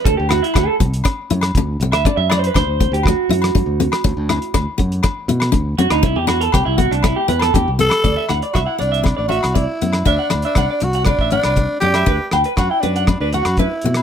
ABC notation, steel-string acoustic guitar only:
X:1
M:4/4
L:1/8
Q:1/4=120
K:Dmix
V:1 name="Steel-string acoustic guitar"
D E D C D E D C | D E D C D E D C | D E D B, D E D C | C D C B, C E D C |
D E D B, C D C B, | D E D D z D C B, | D F D B, D E D C |]